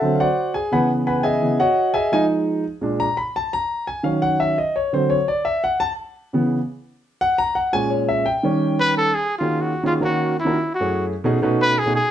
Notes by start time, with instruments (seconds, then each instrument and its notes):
Already playing: grand piano A4 E5 F#5 A5
0.02 grand piano D3 F#3 C4
0.15 grand piano F5
0.20 grand piano F#4 C5 D5 F#5
0.54 grand piano G#4 G#5
0.72 grand piano C#3 E3 B3 B4 F#5 G#5 B5
1.07 grand piano B4 F#5 G#5 B5
1.19 grand piano G5
1.23 grand piano G#4 D#5 E5 G#5
1.42 grand piano C#3 E3 B3
1.60 grand piano F#4 C#5 D#5 F#5
1.94 grand piano G#4 D#5 E5 G#5
2.12 grand piano F3 G#3 D#4 G#4 D#5 F5 G#5
2.81 grand piano A#2 G#3 D4
3.00 grand piano A#5
3.17 grand piano B5
3.36 grand piano A5
3.53 grand piano A#5
3.87 grand piano G#5
4.03 grand piano D#3 F#3 C#4 F5
4.22 grand piano F#5
4.40 grand piano E5
4.58 grand piano D#5
4.76 grand piano C#5
4.93 grand piano D3 F#3 C4 C5
5.10 grand piano C#5
5.28 grand piano D5
5.45 grand piano E5
5.64 grand piano F#5
5.80 grand piano A5
6.33 grand piano C#3 E3 B3
7.21 grand piano F#5
7.38 grand piano A#5
7.55 grand piano F#5
7.72 grand piano A#2 G#3 C#4 G#5
7.90 grand piano C#5
8.09 grand piano E5
8.26 grand piano G5
8.43 grand piano D#3 G3 C#4
8.80 trumpet B4
8.97 trumpet A4
9.14 trumpet G#4
9.38 grand piano D#3 A#3 C#4 F4 F#4 G#4, trumpet F4
9.61 trumpet F#4
9.83 grand piano D#3 A#3 C#4 F4 F#4 G#4, trumpet F4
10.01 grand piano D#3 A#3 C#4 F#4 A#4 F5, trumpet F#4
10.39 trumpet E4
10.45 grand piano D#3 A#3 C#4 F4 F#4 A#4
10.74 trumpet F#4
10.80 grand piano F#2 A3 C#4 E4 G#4
11.24 grand piano B2 A3 C#4 D#4 F#4 G#4
11.42 grand piano B2 A3 C#4 D#4 F#4 B4
11.62 trumpet B4
11.79 trumpet G#4
11.86 grand piano B2 A3 C#4 D#4 F#4 G#4
11.95 trumpet G#4